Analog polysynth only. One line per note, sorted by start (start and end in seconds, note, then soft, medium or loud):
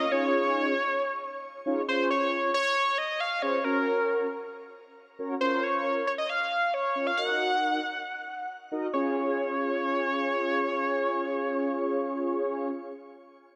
0.12 0.74 C#4 medium
0.12 0.74 D#4 medium
0.12 0.74 F4 medium
0.12 0.74 G#4 medium
0.12 0.74 C#5 medium
1.66 1.81 C#4 medium
1.66 1.81 D#4 medium
1.66 1.81 F4 medium
1.66 1.81 G#4 medium
1.66 1.81 C#5 loud
1.88 2.50 C#4 medium
1.88 2.50 F4 medium
1.88 2.50 G#4 medium
1.88 2.50 C#5 medium
3.42 3.58 C#4 medium
3.42 3.58 F4 medium
3.42 3.58 G#4 medium
3.42 3.58 C5 medium
3.65 4.27 C#4 medium
3.65 4.27 F#4 medium
3.65 4.27 A#4 medium
3.65 4.27 C#5 medium
5.19 5.34 C#4 medium
5.19 5.34 F#4 medium
5.19 5.34 A#4 medium
5.19 5.34 C#5 loud
5.41 6.03 C#4 medium
5.41 6.03 F4 medium
5.41 6.03 A#4 medium
5.41 6.03 C#5 medium
6.95 7.11 C#4 medium
6.95 7.11 F4 medium
6.95 7.11 A#4 medium
6.95 7.11 C#5 medium
7.17 7.80 D#4 medium
7.17 7.80 F#4 medium
7.17 7.80 A#4 medium
7.17 7.80 D#5 medium
8.72 8.87 D#4 medium
8.72 8.87 F#4 medium
8.72 8.87 A#4 medium
8.72 8.87 D#5 medium
8.94 12.71 C#4 medium
8.94 12.71 F4 medium
8.94 12.71 G#4 medium
8.94 12.71 C#5 medium